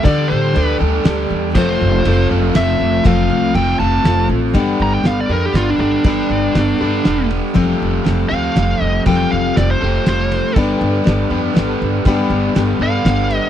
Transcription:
Already playing: tonewheel organ D4 G4 A4
0.03 upright bass D2, steel-string acoustic guitar D3 G3 D4 G4 A4, lead electric guitar D5, kick, ride
0.28 upright bass A2, lead electric guitar C5
0.53 upright bass D2, overdriven electric guitar D3, steel-string acoustic guitar G3 D4 G4 A4, ride
0.63 lead electric guitar B4
0.79 upright bass D2, overdriven electric guitar G3, steel-string acoustic guitar D4 G4 A4
1.04 upright bass D2, steel-string acoustic guitar G3 D4 G4 A4, snare, ride
1.31 upright bass E2
1.55 upright bass F1, steel-string acoustic guitar F3 A3 C4 F4 A4, tonewheel organ C4 F4 A4, lead electric guitar C5, kick, crash
1.82 upright bass F1
2.05 upright bass F1, steel-string acoustic guitar A3 C4 F4 A4, ride
2.30 upright bass F1, overdriven electric guitar C4 F4 A4
2.54 upright bass F1, steel-string acoustic guitar A3 C4 F4 A4, lead electric guitar E5, snare, ride
2.80 upright bass F1
3.04 upright bass F1, steel-string acoustic guitar F3 A3 C4 F4 A4, lead electric guitar F5, kick, ride
3.29 upright bass C2
3.54 upright bass F1, steel-string acoustic guitar A3 C4 F4 A4, lead electric guitar G5, ride
3.79 upright bass F1, overdriven electric guitar C4 F4 A4, lead electric guitar A5
4.04 upright bass F1, steel-string acoustic guitar A3 C4 F4 A4, snare, ride
4.29 upright bass A1
4.54 upright bass G1, steel-string acoustic guitar G3 B3 D4 G4 A4, overdriven electric guitar B4, kick, ride
4.80 upright bass G1, lead electric guitar A#5
4.94 lead electric guitar G5
5.03 upright bass G1, steel-string acoustic guitar B3 D4 G4 A4, lead electric guitar F5, snare, ride
5.20 lead electric guitar D5
5.29 upright bass F2, overdriven electric guitar G3 B3 B4, steel-string acoustic guitar D4 G4 A4, lead electric guitar A#4
5.46 lead electric guitar G4
5.53 upright bass G1, steel-string acoustic guitar B3 D4 G4 A4, lead electric guitar F4, snare, ride
5.70 lead electric guitar D4
5.78 upright bass G1, lead electric guitar D4, steel-string acoustic guitar D4 G4 A4
6.04 upright bass G1, steel-string acoustic guitar G3 B3 D4 G4 A4, overdriven electric guitar B4, kick, ride
6.29 upright bass G1
6.55 upright bass G1, steel-string acoustic guitar B3 D4 G4 A4, snare, ride
6.78 upright bass G1, overdriven electric guitar B3 B4, steel-string acoustic guitar D4 G4 A4
6.83 overdriven electric guitar G3
7.03 upright bass E1, steel-string acoustic guitar B3 D4 G4 A4, snare, ride
7.31 ride
7.54 upright bass F1, steel-string acoustic guitar F3 G3 C4 G4 A4, overdriven electric guitar A3 F4, kick, ride
7.82 upright bass F1
8.04 upright bass F1, steel-string acoustic guitar G3 C4 G4 A4, snare, ride
8.29 upright bass D2, overdriven electric guitar F3 A3 F4, steel-string acoustic guitar C4 G4 A4, lead electric guitar F5
8.56 upright bass F1, steel-string acoustic guitar G3 C4 G4 A4, snare, ride
8.81 upright bass F1, lead electric guitar D#5
9.06 upright bass F1, steel-string acoustic guitar F3 G3 C4 G4 A4, overdriven electric guitar A3 F4, lead electric guitar G5, kick, ride
9.31 upright bass F1, lead electric guitar F5
9.56 upright bass F1, steel-string acoustic guitar G3 C4 G4 A4, lead electric guitar D5, snare, ride
9.71 lead electric guitar C5
9.82 upright bass F1, overdriven electric guitar F3 A3 F4, steel-string acoustic guitar C4 G4 A4
10.06 upright bass F1, steel-string acoustic guitar G3 C4 G4 A4, lead electric guitar C5, snare, ride
10.32 ride
10.56 upright bass G1, steel-string acoustic guitar G3 B3 D4 G4 A4, tonewheel organ B3 G4 A4, overdriven electric guitar B4, kick, ride
10.81 upright bass G1
11.04 upright bass G1, steel-string acoustic guitar B3 D4 G4 A4, snare, ride
11.30 upright bass F2, overdriven electric guitar G3 B3 D4 B4
11.54 upright bass G1, steel-string acoustic guitar B3 D4 G4 A4, snare, ride
11.82 upright bass G1
12.05 upright bass G1, steel-string acoustic guitar G3 B3 D4 G4 A4, overdriven electric guitar B4, kick, ride
12.30 upright bass G1
12.55 upright bass G1, steel-string acoustic guitar B3 D4 G4 A4, snare, ride
12.80 upright bass G1, overdriven electric guitar G3 B3 D4 B4, lead electric guitar F5
13.04 upright bass G1, steel-string acoustic guitar B3 D4 G4 A4, snare, ride
13.31 ride
13.36 lead electric guitar D#5

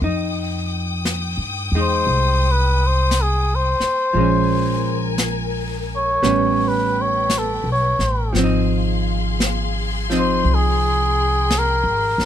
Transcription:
0.01 upright bass F2, hollow-body jazz guitar D#4, string section G5 D#6, brush sweep
1.05 brush sweep, snare, hi-hat pedal
1.37 upright bass G2
1.72 upright bass E2, hollow-body jazz guitar G#3
1.76 hollow-body jazz guitar D#4
1.81 muted trumpet C5
2.07 upright bass C2, brush sweep
2.52 muted trumpet B4
2.87 muted trumpet C5
3.11 brush sweep, snare, hi-hat pedal
3.23 muted trumpet G#4
3.56 muted trumpet C5
3.80 muted upright bass stroke, snare
4.13 upright bass A#1, hollow-body jazz guitar F3 G#3, string section A#4 G#5, brush sweep
4.19 hollow-body jazz guitar C#4
5.18 brush sweep, snare, hi-hat pedal
5.97 muted trumpet C#5
6.23 upright bass A1, hollow-body jazz guitar G3 B3 C#4, string section B4 G5, brush sweep, snare
6.68 muted trumpet B4
7.02 muted trumpet C#5
7.30 brush sweep, snare, hi-hat pedal
7.38 muted trumpet A4
7.64 upright bass B1
7.72 muted trumpet C#5
7.99 upright bass A1, snare
8.33 upright bass G#1, hollow-body jazz guitar F3, string section G#4 F5 C6, brush sweep, snare
8.39 hollow-body jazz guitar C4
8.44 hollow-body jazz guitar D#4
9.40 brush sweep, snare, hi-hat pedal
10.10 hollow-body jazz guitar F3 C4 D#4, snare
10.19 muted trumpet C5
10.44 upright bass C2, string section G5, brush sweep
10.54 muted trumpet G#4
11.50 brush sweep, snare, hi-hat pedal
11.59 muted trumpet A#4
11.84 upright bass G#1
12.18 upright bass F#1, snare

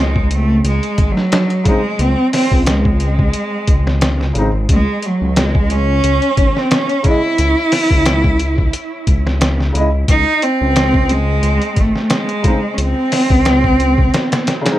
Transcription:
Already playing: detuned saw bass C#2
0.00 cello G#3
0.16 kick
0.31 cello A3, closed hi-hat
0.64 detuned saw bass C#2, cello G#3, closed hi-hat
0.83 closed hi-hat
0.98 detuned saw bass G#1, kick, closed hi-hat
1.12 cello F#3
1.17 snare
1.32 snare, closed hi-hat
1.50 closed hi-hat
1.64 felt piano C#3 G#3 C4, cello G#3, kick, closed hi-hat
1.69 felt piano D#4
1.99 detuned saw bass C#2, cello C4, closed hi-hat
2.33 cello C4, snare, open hi-hat
2.52 detuned saw bass C#2, kick
2.66 cello G#3, snare, closed hi-hat
2.85 kick
3.00 closed hi-hat
3.19 kick
3.33 closed hi-hat
3.67 detuned saw bass C#2, kick, closed hi-hat
3.87 snare
4.01 snare, closed hi-hat
4.21 snare
4.33 detuned saw bass G#1, felt piano C#3 G#3 C4, closed hi-hat
4.39 felt piano D#4
4.53 detuned saw bass G#1
4.69 detuned saw bass C#2, cello G#3, kick, closed hi-hat
5.02 cello F#3, closed hi-hat
5.22 detuned saw bass C#2
5.36 cello G#3, snare, closed hi-hat
5.55 kick
5.70 cello C#4, closed hi-hat
6.04 detuned saw bass C#2, closed hi-hat
6.22 closed hi-hat
6.37 detuned saw bass G#1, kick, closed hi-hat
6.57 cello C4, snare
6.71 cello C#4, snare, closed hi-hat
6.89 closed hi-hat
7.03 felt piano C#3 G#3 E4, cello E4, kick, closed hi-hat
7.08 felt piano D#5
7.38 detuned saw bass C#2, closed hi-hat
7.72 snare, open hi-hat
7.91 detuned saw bass C#2, kick
8.06 snare, closed hi-hat
8.24 kick
8.40 closed hi-hat
8.58 kick
8.73 closed hi-hat
9.07 detuned saw bass C#2, kick, closed hi-hat
9.27 snare
9.41 snare, closed hi-hat
9.60 snare
9.72 detuned saw bass C#2, felt piano C#3 G#3 E4, closed hi-hat
9.77 felt piano D#5
10.08 detuned saw bass C#2, cello D#4, kick, closed hi-hat
10.42 cello C4, closed hi-hat
10.61 detuned saw bass C#2
10.76 snare, closed hi-hat
10.94 kick
11.09 cello G#3, closed hi-hat
11.43 detuned saw bass C#2, closed hi-hat
11.62 closed hi-hat
11.76 detuned saw bass G#1, cello A3, kick, closed hi-hat
11.96 snare
12.10 cello G#3, snare, closed hi-hat
12.29 closed hi-hat
12.42 felt piano C#3 G#3 C4, kick, closed hi-hat
12.47 felt piano D#4
12.74 cello C#4
12.78 detuned saw bass C#2, cello C4, closed hi-hat
13.12 snare, open hi-hat
13.30 detuned saw bass C#2, kick
13.45 snare, closed hi-hat
13.64 kick
13.80 closed hi-hat
13.98 kick
14.14 snare, closed hi-hat
14.32 snare, closed hi-hat
14.47 snare, closed hi-hat
14.62 felt piano C#3 G#3
14.66 felt piano C4, snare, closed hi-hat
14.72 felt piano D#4

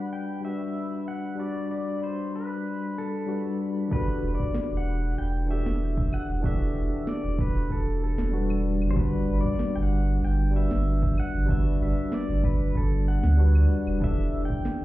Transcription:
Already playing: tine electric piano G3 D4 F#4 B4, pedal steel guitar F#5, synth texture B5
0.13 pedal steel guitar G5
0.40 tine electric piano G3 D4
0.45 tine electric piano F#4 B4, pedal steel guitar E5
0.76 cabasa
1.07 pedal steel guitar F#5, cabasa
1.35 tine electric piano G3 D4
1.39 tine electric piano F#4 D5, pedal steel guitar D5, cabasa
1.71 pedal steel guitar D5, cabasa
2.03 pedal steel guitar C5, cabasa
2.34 pedal steel guitar B4, cabasa
2.51 cabasa
2.66 cabasa
2.98 pedal steel guitar A4, cabasa
3.14 cabasa
3.26 tine electric piano G3 D4 F#4 B4, cabasa
3.60 cabasa
3.77 cabasa
3.88 tine electric piano E3 D4 F#4, kick
3.93 tine electric piano G4 A4, pedal steel guitar B4, cabasa
4.23 sub bass E1, cabasa
4.35 pedal steel guitar D5
4.40 kick, cabasa
4.54 snare
4.71 sub bass E1
4.77 pedal steel guitar F#5
4.87 cabasa
5.03 cabasa
5.18 sub bass E1, pedal steel guitar G5, cabasa
5.46 tine electric piano E3 D4 F#4, cabasa
5.51 tine electric piano G4 A4, pedal steel guitar E5
5.66 sub bass E1, snare
5.82 cabasa
5.97 kick
6.13 pedal steel guitar F#5, cabasa, claves
6.29 sub bass E1, cabasa
6.41 tine electric piano E3 D4 F#4, kick, cabasa
6.46 tine electric piano G4 A4, pedal steel guitar E5
6.75 sub bass E1, cabasa
6.93 cabasa
7.07 pedal steel guitar D5, snare, cabasa
7.24 sub bass E1
7.39 pedal steel guitar B4, kick, cabasa
7.56 cabasa
7.70 sub bass E1, pedal steel guitar A4, kick, cabasa
8.02 pedal steel guitar A4, cabasa
8.18 sub bass E1, snare
8.31 tine electric piano G3 D4 F#4 B4, cabasa
8.50 claves
8.65 cabasa
8.81 sub bass G1, cabasa, claves
8.91 tine electric piano G3, pedal steel guitar C5
8.95 tine electric piano D4 F#4, pedal steel guitar B4, kick, cabasa
9.00 tine electric piano B4
9.28 sub bass G1, cabasa
9.41 pedal steel guitar D5, kick, cabasa
9.59 snare
9.76 sub bass G1, pedal steel guitar G5
9.83 pedal steel guitar F#5
9.92 cabasa
10.08 cabasa
10.23 sub bass G1, pedal steel guitar G5, cabasa
10.51 tine electric piano G3 D4
10.55 tine electric piano F#4 B4, pedal steel guitar E5, cabasa
10.71 sub bass G1, snare
10.87 cabasa
11.03 kick
11.18 pedal steel guitar F#5, cabasa, claves
11.34 sub bass G1, cabasa
11.46 tine electric piano G3 D4, kick, cabasa
11.50 tine electric piano F#4 B4, pedal steel guitar E5
11.81 sub bass G1, pedal steel guitar E5, cabasa
11.98 cabasa
12.12 pedal steel guitar D5, snare
12.29 sub bass G1
12.44 pedal steel guitar B4, kick, cabasa
12.61 cabasa
12.75 sub bass G1, pedal steel guitar A4, kick, cabasa
13.08 pedal steel guitar F#5, cabasa
13.23 sub bass D2, snare, cabasa
13.37 tine electric piano G3 D4 F#4 B4, cabasa
13.55 claves
13.71 cabasa
13.87 sub bass E1, cabasa, claves
13.98 tine electric piano E3 D4 E4, kick
14.03 tine electric piano G4 A4, pedal steel guitar E5, cabasa
14.34 sub bass E1, cabasa
14.45 pedal steel guitar G5
14.50 kick, cabasa
14.65 snare

